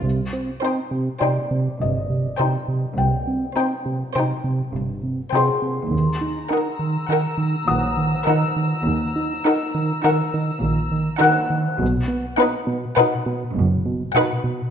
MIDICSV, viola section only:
0, 0, Header, 1, 2, 480
1, 0, Start_track
1, 0, Tempo, 588235
1, 32, Time_signature, 5, 2, 24, 8
1, 11998, End_track
2, 0, Start_track
2, 0, Title_t, "Viola section"
2, 0, Program_c, 0, 48
2, 514, Note_on_c, 0, 63, 31
2, 870, Note_off_c, 0, 63, 0
2, 988, Note_on_c, 0, 63, 30
2, 1347, Note_off_c, 0, 63, 0
2, 1950, Note_on_c, 0, 63, 31
2, 2308, Note_off_c, 0, 63, 0
2, 2908, Note_on_c, 0, 63, 32
2, 3267, Note_off_c, 0, 63, 0
2, 3396, Note_on_c, 0, 63, 30
2, 3751, Note_off_c, 0, 63, 0
2, 4352, Note_on_c, 0, 63, 35
2, 4709, Note_off_c, 0, 63, 0
2, 5309, Note_on_c, 0, 63, 36
2, 5668, Note_off_c, 0, 63, 0
2, 5788, Note_on_c, 0, 63, 36
2, 6147, Note_off_c, 0, 63, 0
2, 6748, Note_on_c, 0, 63, 37
2, 7107, Note_off_c, 0, 63, 0
2, 7710, Note_on_c, 0, 63, 42
2, 8068, Note_off_c, 0, 63, 0
2, 8194, Note_on_c, 0, 63, 44
2, 8550, Note_off_c, 0, 63, 0
2, 9148, Note_on_c, 0, 63, 49
2, 9507, Note_off_c, 0, 63, 0
2, 10114, Note_on_c, 0, 63, 53
2, 10470, Note_off_c, 0, 63, 0
2, 10595, Note_on_c, 0, 63, 52
2, 10950, Note_off_c, 0, 63, 0
2, 11551, Note_on_c, 0, 63, 56
2, 11909, Note_off_c, 0, 63, 0
2, 11998, End_track
0, 0, End_of_file